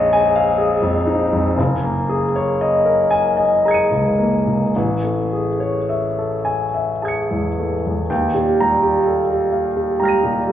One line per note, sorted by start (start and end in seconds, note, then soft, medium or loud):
0.00 1.52 A#1 medium
0.00 1.07 D#4 medium
0.00 0.58 G#4 medium
0.00 1.60 C#5 medium
0.00 0.26 D#5 medium
0.00 0.36 F5 medium
0.13 0.50 G#5 medium
0.36 0.74 F5 medium
0.58 0.97 G#4 medium
0.82 1.22 F2 medium
1.07 1.47 D#4 medium
1.33 1.57 F2 soft
1.58 4.69 F#1 medium
1.83 2.23 A#3 soft
2.09 2.48 G#4 soft
2.36 2.74 C#5 soft
2.61 3.00 D#5 medium
2.85 3.25 A#4 soft
3.11 3.52 G#5 medium
3.37 3.79 D#5 medium
3.65 4.07 G#4 soft
3.65 4.71 A#5 soft
3.65 4.72 G#6 soft
3.71 4.74 C#7 soft
3.71 4.75 D#7 soft
3.91 4.34 C#2 soft
4.19 4.63 A#3 soft
4.47 4.74 C#2 soft
4.76 8.07 A1 medium
5.03 5.48 A3 soft
5.33 5.78 G#4 soft
5.60 6.06 C#5 soft
5.89 6.34 E5 soft
6.18 6.63 A4 soft
6.45 6.90 G#5 medium
6.74 7.18 E5 soft
7.02 7.47 G#4 soft
7.02 8.06 A5 soft
7.02 8.07 G#6 soft
7.08 8.09 C#7 soft
7.31 7.75 E2 soft
7.59 8.01 A3 soft
7.87 8.11 E2 soft
8.10 10.52 D#2 medium
8.10 8.49 G5 soft
8.34 8.73 A#2 soft
8.34 8.73 G4 soft
8.60 8.97 G3 soft
8.60 8.97 A#5 medium
8.83 9.20 G4 soft
9.06 9.29 A4 soft
9.30 9.67 G4 soft
9.52 9.90 F5 soft
9.77 10.14 G4 soft
10.00 10.38 G3 soft
10.00 10.52 G5 soft
10.00 10.37 A#5 soft
10.00 10.52 F6 soft
10.05 10.52 A#6 soft
10.05 10.52 D#7 soft
10.23 10.52 A#2 soft
10.23 10.52 G4 soft
10.47 10.52 G3 soft
10.47 10.52 A4 soft